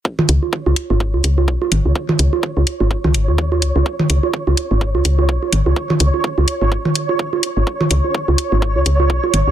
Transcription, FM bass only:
0.29 C#2
0.66 C#2
0.90 G#1
1.14 C#2
1.24 C#2
1.48 B1
1.72 G#1
1.85 C#2
2.19 C#2
2.57 C#2
2.81 G#1
3.04 C#2
3.14 G#1
3.28 D#2
3.62 C#2
3.76 C#2
4.10 C#2
4.47 C#2
4.71 G#1
4.95 C#2
5.05 C#2
5.29 B1
5.53 G#1
5.66 C#2
6.00 C#2
6.38 C#2
6.62 G#1
7.57 G#1
7.91 C#2
8.28 C#2
8.52 G#1
8.76 C#2
8.86 C#2
9.10 B1
9.34 G#1
9.47 C#2

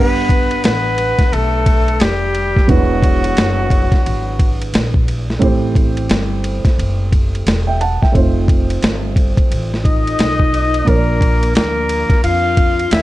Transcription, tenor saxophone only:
Already playing: B3
0.65 B3
1.33 A3
2.02 G3
2.70 F#3
9.85 D#4
10.87 A#3
11.55 A#3
12.24 F4
12.92 E4

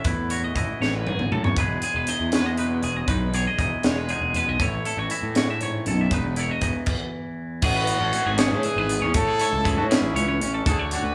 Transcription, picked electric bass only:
0.05 E2
0.55 A1
0.80 A1
1.19 A1
1.31 A2
1.44 E2
1.56 E1
1.94 E1
2.20 E2
2.83 E1
3.07 B1
3.58 E1
3.84 E1
4.21 E1
4.34 E2
4.47 B1
4.59 A1
4.97 A1
5.22 A2
5.87 B1
6.11 E1
6.61 E1
7.62 A1
8.01 A1
8.26 G#1
8.51 A2
8.76 G#1
9.01 E2
9.14 A2
9.53 C#2
9.78 A2
10.02 A1
10.14 C#2
10.40 A1
10.66 D2
11.03 D2

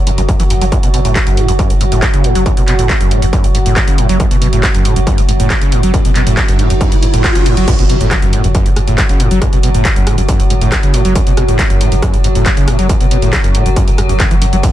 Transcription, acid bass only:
0.07 F#2
0.18 F#2
0.29 F#2
0.40 E3
0.50 F#2
0.61 F#3
0.72 F#2
0.83 B2
0.94 B2
1.05 A2
1.16 E2
1.27 F#2
1.37 A2
1.48 F#2
1.59 F#2
1.70 A2
1.81 G#2
1.92 A2
2.03 E2
2.14 C#3
2.24 A2
2.35 F#3
2.46 F#2
2.57 B2
2.68 B2
2.79 A2
2.89 E2
3.01 F#2
3.11 A2
3.22 F#2
3.33 F#2
3.44 A2
3.55 G#2
3.66 A2
3.76 E2
3.88 C#3
3.98 A2
4.09 F#3
4.20 F#2
4.31 B2
4.42 B2
4.53 A2
4.63 E2
4.75 F#2
4.85 A2
4.96 F#2
5.07 F#2
5.18 A2
5.29 G#2
5.40 A2
5.50 E2
5.61 C#3
5.72 A2
5.83 F#3
5.94 F#2
6.05 B2
6.16 B2
6.27 A2
6.37 E2
6.48 F#2
6.59 A2
6.70 F#2
6.81 F#2
6.92 A2
7.03 G#2
7.14 A2
7.24 E2
7.35 C#3
7.46 A2
7.57 F#3
7.68 F#2
7.79 B2
7.90 B2
8.01 A2
8.11 E2
8.22 F#2
8.33 A2
8.44 F#2
8.55 F#2
8.66 A2
8.76 G#2
8.88 A2
8.98 E2
9.09 C#3
9.20 A2
9.31 F#3
9.42 F#2
9.53 B2
9.63 B2
9.74 A2
9.85 E2
9.96 F#2
10.07 A2
10.18 F#2
10.29 F#2
10.40 A2
10.50 G#2
10.61 A2
10.72 E2
10.83 C#3
10.94 A2
11.05 F#3
11.16 F#2
11.27 B2
11.37 B2
11.48 A2
11.59 E2
11.70 F#2
11.81 A2
11.92 F#2
12.02 F#2
12.14 A2
12.24 G#2
12.35 A2
12.46 E2
12.57 C#3
12.68 A2
12.79 F#3
12.89 F#2
13.01 B2
13.11 B2
13.22 A2
13.33 E2
13.44 F#2
13.55 A2
13.66 F#2
13.76 F#2
13.88 A2
13.98 F#2
14.09 F#2
14.20 F#2
14.31 E3
14.42 F#2
14.53 F#3
14.63 F#2

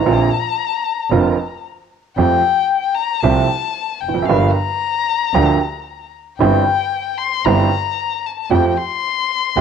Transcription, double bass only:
0.06 A#1
1.10 F1
2.17 F2
3.23 C2
4.02 F1
4.28 G1
5.33 D2
6.39 G1
7.45 G1
8.51 F2
9.56 C2

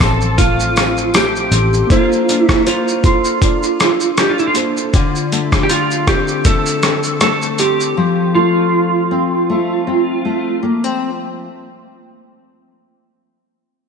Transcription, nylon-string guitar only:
Already playing: F3
0.01 C4
0.38 A3
0.76 C4
1.14 A3
1.52 C4
1.91 A#3 C5
2.29 D4
2.67 C5
3.05 A4
3.43 D4
3.81 A4
4.18 D4
4.56 A4
4.94 D3 F4
5.32 A3
5.70 F4
6.08 C4
6.46 A3
6.83 C4
7.21 A3
7.60 C4
7.97 F3
8.36 A3
9.11 C4
9.50 A3
9.87 C4
10.25 A3
10.63 A#3
10.84 C4

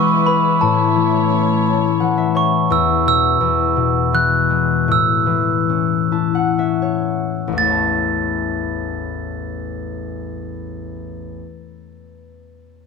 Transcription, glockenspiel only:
Already playing: C#6
0.27 B5
0.61 A5
2.37 C#6
2.72 E6
3.08 E6
4.15 F#6
4.92 E6
7.58 A6

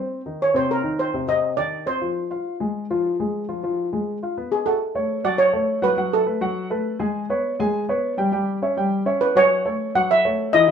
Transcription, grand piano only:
Already playing: C4 C5
0.26 D#3 D#4
0.54 C3 C4
0.84 D#3 D#4
1.14 C3 C4
1.28 C3 C4
1.57 D#3 D#4
1.86 C4 C5
2.01 F3 F4
2.31 F4 F5
2.60 G#3 G#4
2.90 F3 F4
3.20 G#3 G#4
3.49 F3 F4
3.63 F3 F4
3.93 G#3 G#4
4.23 F4 F5
4.37 B3 B4
4.67 F#4 F#5
4.95 A3 A4 C#5
5.24 F#3 F#4 F#5
5.53 A3 A4 C#5
5.82 F#3 F#4 F#5
5.97 F#3 F#4 F#5
6.26 A3 A4 B4
6.41 F#3 F#4 F#5
6.70 A3 A4 B4
6.99 G#3 G#4 G#5
7.29 B3 B4 C#5
7.59 G#3 G#4 G#5
7.89 B3 B4 C#5
8.17 G3 G4 G5
8.32 G3 G4 G5
8.62 C#4 C#5 E5
8.77 G3 G4 G5
9.06 C#4 C#5 E5
9.35 F#3 F#4 F#5
9.65 A3 A4 C#5
9.95 F#3 F#4 F#5
10.25 A3 A4 C#5
10.54 E3 E4 E5
10.68 E3

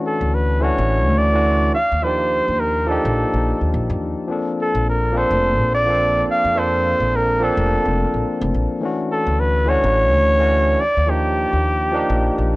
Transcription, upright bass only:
0.21 D2
0.78 A1
1.06 D2
1.92 D#2
2.48 D#2
3.05 A#1
3.34 A#1
3.61 D#2
3.74 A#1
3.90 G2
4.02 D#2
4.75 A#1
5.31 F1
5.59 A#1
6.44 F2
7.00 A#1
7.57 F1
7.85 F1
8.14 A#1
8.41 F1
8.55 A#1
9.27 D2
9.84 A1
10.12 D2
10.97 D#2
11.53 D#2
12.10 A#1
12.38 A#1

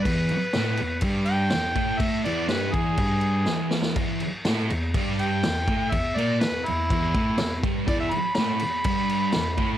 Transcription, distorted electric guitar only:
0.06 E2 E3
0.32 muted distorted electric guitar stroke
0.55 A2 A3
0.81 E2
1.03 G2 G3
1.52 E2
1.75 A2 A3
2.00 A2 A3
2.25 E2 E3
2.49 G2 G3
2.73 E2 E3
2.99 G2 G3
3.48 E2 E3
3.97 E2 E3
4.22 muted distorted electric guitar stroke
4.46 A2 A3
4.71 E2
4.95 G2 G3
5.45 E2
5.69 A2 A3
5.94 E2
6.17 A#2 A#3
6.43 E2
6.69 E2
6.93 E2 E3
7.15 A2 A3
7.39 E2
7.64 G2 G3
7.87 E2 E3
8.13 muted distorted electric guitar stroke
8.38 A2 A3
8.63 E2
8.86 G2 G3
9.34 E2
9.57 A2 A3

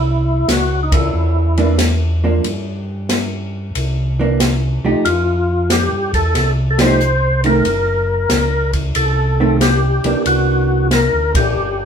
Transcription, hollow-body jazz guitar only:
1.58 E3 A#3 D4
2.24 F3 A#3 D4
4.20 E3 A#3 D4
4.85 F3 A3 D#4 G4
6.80 F3 A3 D#4 G4
7.44 D#3 A3 C4
9.40 D#3 A3 C4
10.05 E3 A#3 D4

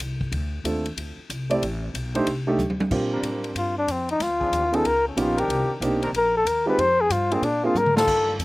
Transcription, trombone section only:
3.12 G3 C4 D4 A#4
4.40 F3 C4 D4 G#4
5.38 D#3 C4 D4 A#4
6.02 D#3 C4 D4 A#4
7.94 D#3 G3 D4 F4

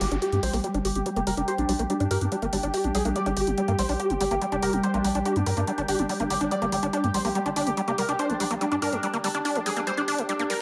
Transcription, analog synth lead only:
0.01 G4
0.22 G4
0.32 G4
0.43 C5
0.53 G4
0.64 G4
0.85 G4
0.95 G4
1.16 G4
1.27 A#4
1.37 G4
1.48 C5
1.58 D4
1.69 D4
1.90 D4
2.00 D4
2.11 A#4
2.21 D4
2.32 D4
2.53 D4
2.63 D4
2.84 D4
2.95 G#4
3.05 D4
3.16 D5
3.26 G4
3.37 G4
3.58 G4
3.68 G4
3.79 C5
3.89 G4
4.00 G4
4.21 G4
4.31 G4
4.52 G4
4.63 A#4
4.73 G4
4.84 C5
4.94 D4
5.04 D4
5.25 D4
5.36 D4
5.46 A#4
5.57 D4
5.67 D4
5.88 D4
5.99 D4
6.20 D4
6.30 G4
6.41 D4
6.51 D5
6.62 G4
6.72 G4
6.93 G4
7.04 G4
7.14 C5
7.25 G4
7.35 G4
7.56 G4
7.67 G4
7.88 G4
7.98 A#4
8.09 G4
8.19 C5
8.30 D4
8.40 D4
8.61 D4
8.72 D4
8.82 A#4
8.93 D4
9.03 D4
9.24 D4
9.35 D4
9.55 D4
9.66 G#4
9.76 D4
9.87 C5
9.97 D4
10.08 D4
10.29 D4
10.39 D4
10.50 A#4

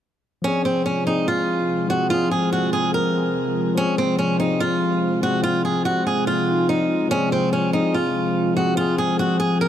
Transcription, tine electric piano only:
0.42 F3 C4
0.47 G#4
1.04 F3 C4
1.10 G#4
1.88 F3 C4
1.93 G#4
2.09 F3 C4
2.14 G#4
2.70 F3 C4
2.76 G#4
3.13 F3 C4
3.18 G#4
3.75 F3 C4
3.80 G#4
4.37 F3 C4
4.42 G#4
5.21 F3 C4
5.26 G#4
5.42 F3 C4
5.48 F4
6.03 F3 C4
6.09 G#4
6.45 F3 C4
6.51 D#4
7.09 F3 C4
7.14 G#4
7.71 F3 C4
7.76 G#4
8.54 F3 C4
8.60 G#4
8.75 F3 C4
8.81 G#4
9.37 F3 C4
9.42 G#4

